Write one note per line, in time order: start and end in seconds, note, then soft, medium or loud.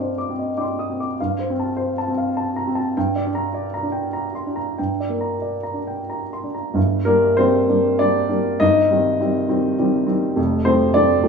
0.00 1.15 G2 soft
0.00 0.17 C4 soft
0.00 0.48 D4 soft
0.00 1.21 C5 soft
0.00 0.39 D#5 soft
0.00 0.11 D6 soft
0.18 0.51 D6 soft
0.29 0.77 C4 soft
0.39 0.71 D#5 soft
0.57 1.06 D4 soft
0.57 1.14 G5 soft
0.57 1.15 C6 soft
0.57 0.62 D6 soft
0.64 0.99 D6 soft
0.79 0.99 D#6 soft
0.90 1.19 C4 soft
1.00 1.19 D6 soft
1.20 2.93 G2 medium
1.20 1.51 F5 soft
1.39 1.70 C5 soft
1.50 1.96 C4 soft
1.60 1.90 A5 soft
1.77 2.08 C5 soft
1.98 2.29 A5 soft
2.08 2.55 C4 soft
2.18 2.49 F5 soft
2.37 2.68 A5 soft
2.56 2.76 A#5 soft
2.67 2.96 C4 soft
2.75 2.95 A5 soft
2.97 4.74 G2 medium
2.97 3.27 G5 medium
3.16 3.46 D5 soft
3.26 3.72 D4 soft
3.35 3.66 A#5 soft
3.54 3.86 D5 soft
3.74 4.06 A#5 soft
3.83 4.33 D4 soft
3.92 4.26 G5 soft
4.13 4.47 A#5 soft
4.35 4.56 C6 soft
4.47 4.98 D4 soft
4.56 4.90 A#5 soft
4.78 6.72 G2 soft
4.78 5.13 G5 soft
5.00 5.34 D5 soft
5.09 5.62 A#3 soft
5.21 5.56 A#5 soft
5.42 5.78 D5 soft
5.63 6.00 A#5 soft
5.74 6.28 D4 soft
5.87 6.23 G5 soft
6.10 6.45 A#5 soft
6.33 6.55 C6 soft
6.44 6.76 D4 soft
6.55 6.76 A#5 soft
6.74 7.05 G1 medium
6.74 7.06 G2 medium
7.05 7.35 G3 soft
7.05 7.36 A#3 medium
7.05 7.35 D4 soft
7.05 7.37 A#4 medium
7.37 7.66 G3 soft
7.37 7.66 A#3 soft
7.37 7.96 C4 medium
7.37 7.67 D4 soft
7.37 7.99 C5 medium
7.68 7.96 G3 soft
7.68 7.97 A#3 soft
7.68 7.97 D4 soft
7.99 8.27 G3 soft
7.99 8.27 A#3 soft
7.99 8.28 D4 medium
7.99 8.60 D5 medium
8.29 8.57 G3 soft
8.29 8.57 A#3 soft
8.29 8.57 D4 soft
8.60 8.89 G1 medium
8.60 8.89 G2 medium
8.60 10.04 D#4 medium
8.60 10.08 D#5 medium
8.91 9.17 D#3 soft
8.91 9.17 G3 soft
8.91 9.17 C4 soft
9.20 9.46 D#3 soft
9.20 9.47 G3 soft
9.20 9.47 C4 soft
9.48 9.75 D#3 soft
9.48 9.76 G3 soft
9.48 9.75 C4 soft
9.78 10.05 D#3 soft
9.78 10.05 G3 soft
9.78 10.05 C4 soft
10.06 10.34 D#3 soft
10.06 10.34 G3 soft
10.06 10.34 C4 soft
10.36 10.65 F1 medium
10.36 10.65 F2 medium
10.65 10.92 F3 soft
10.65 10.92 A3 soft
10.65 10.93 C4 medium
10.65 10.95 C5 medium
10.94 11.21 F3 soft
10.94 11.22 A3 soft
10.94 11.22 C4 medium
10.94 11.28 D4 medium
10.94 11.28 D5 medium
11.23 11.28 F3 soft
11.23 11.28 A3 soft
11.23 11.28 C4 soft